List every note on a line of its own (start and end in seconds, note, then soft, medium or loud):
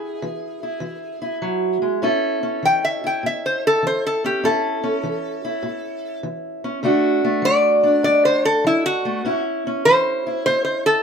0.00 0.18 E3 medium
0.00 0.63 E4 medium
0.00 1.38 G#4 medium
0.22 0.78 E3 medium
0.63 1.20 E4 soft
0.80 1.37 E3 medium
1.22 1.99 E4 medium
1.42 1.81 F#3 medium
1.82 2.02 G#3 medium
2.02 2.58 A2 medium
2.02 2.43 C#4 medium
2.02 3.03 E4 medium
2.02 5.54 A4 medium
2.43 4.23 C#4 medium
2.63 3.18 E3 medium
2.63 2.83 G5 medium
2.85 3.03 E5 medium
3.04 4.41 E4 medium
3.04 3.24 G5 medium
3.23 3.79 A2 medium
3.23 3.44 E5 medium
3.46 3.63 C5 medium
3.67 3.84 A4 medium
3.83 4.39 E3 medium
3.87 4.04 C5 medium
4.07 4.24 A4 medium
4.24 4.41 C#4 medium
4.24 4.43 G4 medium
4.43 4.99 A2 medium
4.43 4.82 C#4 medium
4.43 5.43 E4 medium
4.43 6.20 A4 medium
4.84 6.63 C#4 medium
5.03 5.59 E3 medium
5.45 6.81 E4 medium
5.63 6.19 A2 medium
6.23 6.79 E3 medium
6.64 6.81 C#4 medium
6.83 7.39 D3 medium
6.83 7.24 A3 medium
6.83 7.82 D4 medium
6.83 9.24 F#4 medium
7.24 9.05 A3 medium
7.42 7.99 F#3 medium
7.42 8.02 D5 loud
7.83 9.21 D4 medium
8.03 8.59 A2 medium
8.03 8.23 D5 medium
8.25 8.44 C5 medium
8.45 8.64 A4 loud
8.64 9.20 F#3 medium
8.64 8.84 E4 medium
8.86 9.43 F#4 loud
9.05 9.25 A3 medium
9.25 9.80 A2 medium
9.25 9.65 C#4 medium
9.25 10.25 E4 medium
9.67 11.03 C#4 medium
9.85 10.41 E3 medium
9.85 10.43 C5 loud
10.27 11.03 E4 medium
10.46 11.01 A2 medium
10.46 10.63 C5 loud
10.65 10.83 C5 medium
10.86 11.03 A4 loud